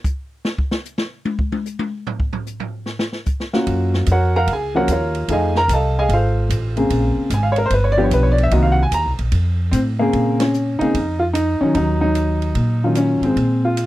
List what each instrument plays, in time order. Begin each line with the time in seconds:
0.04 kick, hi-hat pedal
0.45 snare
0.58 kick
0.71 snare
0.85 hi-hat pedal
0.98 snare
1.25 high tom
1.39 kick
1.52 high tom
1.65 hi-hat pedal
1.79 high tom
2.07 floor tom
2.20 kick
2.33 floor tom
2.46 hi-hat pedal
2.60 floor tom
2.86 snare
2.99 snare
3.12 snare
3.26 kick, hi-hat pedal
3.40 snare
3.53 grand piano A#3 C#4 F4 F#4, snare
3.67 upright bass F#2, kick, ride
3.94 snare
4.06 upright bass F2, kick, hi-hat pedal, ride
4.12 grand piano F#4 A#4 C#5 F#5
4.36 grand piano A#4 F5 F#5 A#5
4.47 upright bass C#2, kick, ride
4.53 grand piano G#4 G#5
4.75 grand piano F3 A#3 C#4 F#4 A#4 C#5 F#5
4.88 upright bass D#2, grand piano F5, kick, hi-hat pedal, ride
4.92 grand piano F4 A#4 C#5
5.15 ride
5.28 upright bass F2, grand piano F3 A3 D#4 G#4 G#5, kick, ride
5.32 grand piano D#5 F5
5.55 grand piano A#4 A#5, snare
5.68 upright bass C2, kick, hi-hat pedal, ride
5.73 grand piano A4 D#5 F5 A5
5.99 grand piano G#4 D#5 F5 G#5
6.09 upright bass G#1, kick, ride
6.13 grand piano F4 A4 C5 F5
6.50 upright bass A1, kick, hi-hat pedal, ride
6.76 grand piano C#3 A#3 C4 G#4, ride
6.90 upright bass A#1, kick, ride
7.16 muted upright bass stroke
7.30 upright bass G#1, grand piano G#5, kick, hi-hat pedal, ride
7.43 grand piano F5
7.52 grand piano C#5
7.56 grand piano A#4, ride
7.66 grand piano C5
7.70 upright bass G1, grand piano B4, kick, ride
7.84 grand piano C#5
7.92 grand piano D5
7.97 grand piano F3 B3 D4 G4
8.04 grand piano C#5
8.11 upright bass B1, grand piano B4, kick, hi-hat pedal, ride
8.23 grand piano C#5
8.32 grand piano D5
8.38 ride
8.43 grand piano E5
8.51 upright bass C2, grand piano D#3 A#3 C4 F#4 D#5, kick, ride
8.63 grand piano F5
8.72 grand piano F#5
8.83 grand piano G#5
8.91 upright bass D#2, grand piano A#5, kick, hi-hat pedal, ride
9.05 upright bass C2
9.19 upright bass A#1, ride
9.32 upright bass F2, kick, ride
9.71 upright bass A2, grand piano C4, kick, hi-hat pedal, ride
9.99 grand piano C#3 A#3 C4 G#4
10.13 upright bass A#2, kick, ride
10.40 grand piano C#4, snare, ride
10.54 hi-hat pedal
10.79 grand piano C#3 A#3 C4 D#4 G#4, muted upright bass stroke, ride
10.94 upright bass F2, kick, ride
11.19 grand piano F4
11.34 grand piano D#4, hi-hat pedal, ride
11.61 grand piano D#3 F#3 C#4 D#4, muted upright bass stroke
11.75 upright bass D#2, grand piano F#3 D#4, kick, ride
12.01 grand piano F#3 D#4
12.15 hi-hat pedal, ride
12.42 ride
12.55 upright bass A#2, kick, ride
12.84 grand piano D#3 F#3 C#4 F4
12.95 grand piano C#4, hi-hat pedal, ride
13.21 upright bass G#2, grand piano G#3 C4, ride
13.36 upright bass A#2, kick, ride
13.65 grand piano F4
13.77 hi-hat pedal, ride